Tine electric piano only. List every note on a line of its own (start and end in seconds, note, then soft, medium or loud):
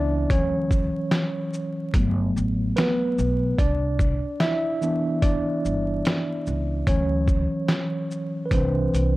0.00 0.31 E3 soft
0.00 0.31 B3 soft
0.00 0.31 D4 medium
0.00 0.32 E4 medium
0.00 0.31 D5 loud
0.00 0.31 E5 loud
0.30 1.91 E3 medium
0.30 1.91 F#3 soft
0.30 1.91 C#4 medium
0.30 1.90 C#5 loud
1.95 3.14 F#3 medium
1.95 3.14 A3 medium
1.95 2.77 B3 medium
2.76 3.56 B3 medium
2.76 3.61 B4 medium
3.58 4.38 D4 medium
3.58 4.43 D5 loud
4.40 5.20 E4 medium
4.40 5.25 E5 loud
4.81 5.40 E3 medium
4.81 5.41 B3 medium
4.81 5.23 D4 medium
5.22 6.84 D4 medium
5.22 6.83 D5 loud
6.87 7.46 E3 medium
6.87 7.46 F#3 soft
6.87 7.47 C#4 medium
6.87 8.42 C#5 loud
8.46 8.51 B4 medium
8.52 9.10 E3 medium
8.52 9.17 C4 medium
8.52 9.11 D4 medium
8.52 9.11 B4 medium
8.52 9.17 C5 medium